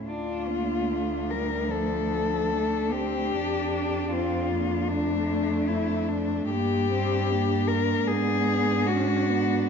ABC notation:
X:1
M:4/4
L:1/8
Q:1/4=74
K:Dm
V:1 name="Cello"
F3 B A3 G- | G2 F2 D2 E D | G3 B ^G2 ^F2 |]
V:2 name="Cello"
D8- | D8 | D8 |]
V:3 name="Cello"
D B, A, G, F,2 A, C | D2 C B, A,4 | B, C B,2 =B,2 ^C B, |]
V:4 name="Cello" clef=bass
D,,8 | F,,8 | G,,4 ^G,,4 |]